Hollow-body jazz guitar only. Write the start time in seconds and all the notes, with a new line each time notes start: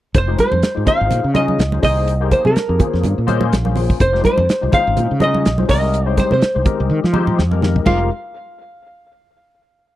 0.18 C5
0.40 C5
0.88 F5
1.36 D#5
1.85 D#5
2.33 C5
2.47 A#4
4.01 C5
4.26 C5
4.75 F5
5.24 D#5
5.71 D#5
6.20 C5
6.34 C5
7.87 F4